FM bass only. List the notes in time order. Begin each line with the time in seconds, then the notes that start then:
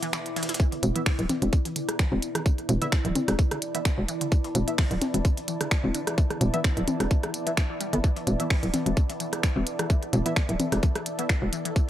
0.83 E1
1.19 D1
1.42 E1
2.12 E1
2.69 E1
3.05 D1
3.28 E1
3.98 E1
4.55 E1
4.91 D1
5.14 E1
5.84 E1
6.41 E1
6.77 D1
7.00 E1
7.93 G1
8.27 E1
8.63 D1
8.86 E1
9.56 E1
10.13 E1
10.49 D1
10.72 E1
11.42 E1